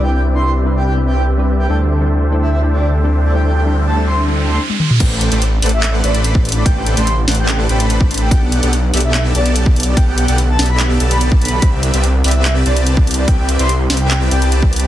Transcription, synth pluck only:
\new Staff \with { instrumentName = "Synth pluck" } { \time 4/4 \key a \dorian \tempo 4 = 145 <g c' d' e' b'>16 r8 <g c' d' e' b'>16 r8 <g c' d' e' b'>8. <g c' d' e' b'>16 r8. <g c' d' e' b'>8. | <g c' d' e' a'>16 r8 <g c' d' e' a'>16 r8 <g c' d' e' a'>8. <g c' d' e' a'>16 r8. <g c' d' e' a'>8. | <g c' d' e' a'>16 r8 <g c' d' e' a'>16 r8 <g c' d' e' a'>8. <g c' d' e' a'>16 r4. | r1 |
r1 | r1 | r1 | r1 |
r1 | }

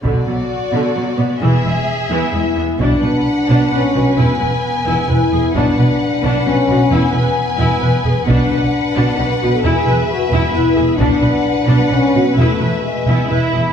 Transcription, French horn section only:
\new Staff \with { instrumentName = "French horn section" } { \time 3/4 \key b \dorian \tempo 4 = 132 r2. | r4. b8 e'4 | d'2 cis'4 | b4. b8 e'4 |
d'2 cis'4 | b2 b8 r8 | d'2 b'8. a'16 | gis'4 fis'8 b8 e'4 |
d'2 cis'8. b16 | a4 gis4 r4 | }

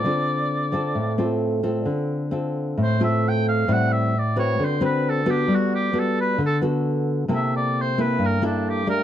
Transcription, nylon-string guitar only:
\new Staff \with { instrumentName = "Nylon-string guitar" } { \time 4/4 \key d \minor \tempo 4 = 133 << { <c' f' a'>4. <c' f' a'>4 <c' f' a'>4 <c' f' a'>8~ | <c' f' a'>4 <c' f' a'>4. <c' f' a'>4. | <g c' e'>4 r8 <c' fis' b'>4 <c' fis' b'>4 <b fis' a'>8~ | <b fis' a'>4 <b fis' a'>4 r8 <b fis' a'>4. |
<bes e' a'>4. <bes e' a'>4 <bes e' a'>4 <a d' g'>8 | } \\ { d2 a,2 | d2 a,2 | a,2 d2 | g2 d2 |
c2 g,2 | } >> }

